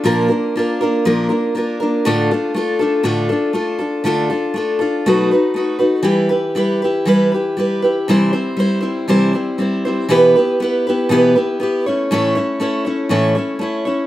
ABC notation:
X:1
M:4/4
L:1/8
Q:1/4=120
K:Dm
V:1 name="Steel-string acoustic guitar"
[B,,F,B,DFB] [B,DFB] [B,DFB] [B,DFB] [B,,F,B,DFB] [B,DFB] [B,DFB] [B,DFB] | [A,,D,A,DFA] [A,DFA] [A,DFA] [A,DFA] [A,,D,A,DFA] [A,DFA] [A,DFA] [DFA] | [D,A,DFA] [DFA] [A,DFA] [DFA] [=B,,^F,A,^D^F=B] [A,DFB] [A,DFB] [A,DFB] | [K:Em] [E,G,EGB] [EGB] [G,EGB] [EGB] [E,G,EGB] [EGB] [G,EGB] [EGB] |
[C,E,G,CEc] [G,CEc] [G,CEc] [G,CEc] [C,E,G,CEc] [G,CEc] [G,CEc] [G,CEc] | [B,,E,B,EGB] [B,EGB] [B,EGB] [B,EGB] [B,,E,B,EGB] [B,EGB] [B,EGB] [A,^CE^c] | [A,,E,A,^CE^c] [A,CEc] [A,CEc] [A,CEc] [A,,E,A,CEc] [A,CEc] [A,CEc] [A,CEc] |]